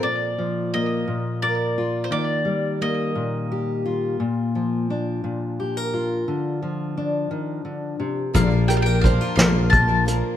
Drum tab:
HH |------|------|------|------|
SD |------|------|------|------|
BD |------|------|------|------|

HH |xxxxxx|
SD |---o--|
BD |o-o-o-|